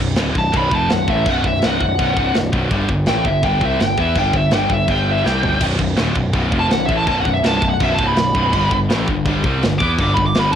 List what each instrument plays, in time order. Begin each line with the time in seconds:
0.00 picked electric bass B0, distorted electric guitar B1 F#2
0.16 picked electric bass D1, distorted electric guitar D2 A2 D3, snare, china
0.33 picked electric bass B0, distorted electric guitar B1 F#2, kick
0.39 lead electric guitar A5
0.52 picked electric bass B0, distorted electric guitar B1 F#2 B2, kick, china
0.56 lead electric guitar B5
0.71 picked electric bass F1, distorted electric guitar F2 C3 F3, lead electric guitar A5, kick
0.90 picked electric bass B0, distorted electric guitar B1 F#2, lead electric guitar F#5, snare, china
1.08 picked electric bass A1, distorted electric guitar A2 E3 A3, lead electric guitar E5, kick
1.26 picked electric bass B0, distorted electric guitar B1 F#2 B2, lead electric guitar F#5, kick, china
1.44 picked electric bass B0, distorted electric guitar B1 F#2, lead electric guitar E5, kick
1.62 picked electric bass C1, distorted electric guitar C2 G2 C3, lead electric guitar F#5, snare, china
1.81 picked electric bass B0, distorted electric guitar B1 F#2, kick
1.99 picked electric bass B0, distorted electric guitar B1 F#2 B2, kick, china
2.17 picked electric bass C1, distorted electric guitar C2 G2 C3, kick
2.34 picked electric bass B0, distorted electric guitar B1 F#2, snare, china
2.52 picked electric bass B0, distorted electric guitar B1 F#2 B2, kick
2.71 picked electric bass G1, distorted electric guitar G2 D3 G3, kick, china
2.89 picked electric bass G1, distorted electric guitar G2 D3, kick
3.06 picked electric bass A1, distorted electric guitar A2 E3 A3, lead electric guitar G5, snare, china
3.25 picked electric bass G1, distorted electric guitar G2 D3, lead electric guitar E5, kick
3.43 picked electric bass G1, distorted electric guitar G2 D3 G3, lead electric guitar G5, kick, china
3.61 picked electric bass C2, distorted electric guitar C3 G3 C4, lead electric guitar E5, kick
3.80 picked electric bass G1, distorted electric guitar G2 D3, lead electric guitar G5, snare, china
3.98 picked electric bass E2, distorted electric guitar E3 B3 E4, lead electric guitar E5, kick
4.16 picked electric bass G1, distorted electric guitar G2 D3 G3, lead electric guitar G5, kick, china
4.33 picked electric bass G1, distorted electric guitar G2 D3, lead electric guitar E5, kick
4.51 picked electric bass G1, distorted electric guitar G2 D3 G3, lead electric guitar G5, snare, china
4.70 picked electric bass G1, distorted electric guitar G2 D3, lead electric guitar E5, kick
4.88 picked electric bass G1, distorted electric guitar G2 D3 G3, lead electric guitar G5, kick, china
5.12 lead electric guitar E5
5.24 picked electric bass C2, distorted electric guitar C3 G3 C4, lead electric guitar G5, snare
5.43 picked electric bass G1, distorted electric guitar G2 D3 G3, floor tom
5.61 picked electric bass B0, distorted electric guitar B1 F#2 B2, kick, crash, china, splash
5.78 picked electric bass B0, distorted electric guitar B1 F#2, kick
5.96 picked electric bass D1, distorted electric guitar D2 A2 D3, snare, china
6.15 picked electric bass B0, distorted electric guitar B1 F#2, kick
6.33 picked electric bass B0, distorted electric guitar B1 F#2 B2, kick, china
6.51 picked electric bass F1, distorted electric guitar F2 C3 F3, kick
6.59 lead electric guitar A5
6.70 picked electric bass B0, distorted electric guitar B1 F#2, lead electric guitar F#5, snare, china
6.86 picked electric bass A1, distorted electric guitar A2 E3 A3, lead electric guitar E5, kick
6.97 lead electric guitar A5
7.07 picked electric bass B0, distorted electric guitar B1 F#2 B2, lead electric guitar A5, kick, china
7.20 lead electric guitar F#5
7.25 picked electric bass B0, distorted electric guitar B1 F#2, kick
7.34 lead electric guitar E5
7.44 picked electric bass C1, distorted electric guitar C2 G2 C3, lead electric guitar A5, snare, china
7.57 lead electric guitar A5
7.62 picked electric bass B0, distorted electric guitar B1 F#2, kick
7.70 lead electric guitar F#5
7.80 picked electric bass B0, distorted electric guitar B1 F#2 B2, lead electric guitar E5, kick, china
7.94 lead electric guitar A5
7.99 picked electric bass C1, distorted electric guitar C2 G2 C3, kick
8.07 lead electric guitar B5
8.16 picked electric bass B0, distorted electric guitar B1 F#2, snare, china
8.35 picked electric bass B0, distorted electric guitar B1 F#2 B2, kick
8.53 picked electric bass G1, distorted electric guitar G2 D3 G3, kick, china
8.71 picked electric bass G1, distorted electric guitar G2 D3, kick
8.90 picked electric bass A1, distorted electric guitar A2 E3 A3, snare, china
9.08 picked electric bass G1, distorted electric guitar G2 D3, kick
9.26 picked electric bass G1, distorted electric guitar G2 D3 G3, kick, china
9.44 picked electric bass C2, distorted electric guitar C3 G3 C4, kick
9.63 picked electric bass G1, distorted electric guitar G2 D3, snare, china
9.79 picked electric bass E2, distorted electric guitar E3 B3, lead electric guitar D6, kick
9.83 distorted electric guitar E4
9.98 picked electric bass G1, distorted electric guitar G2 D3 G3, lead electric guitar D6, kick, china
10.14 picked electric bass G1, distorted electric guitar G2 D3, lead electric guitar B5, kick
10.26 lead electric guitar D6
10.35 picked electric bass G1, distorted electric guitar G2 D3 G3, snare, china
10.39 lead electric guitar B5
10.52 lead electric guitar A5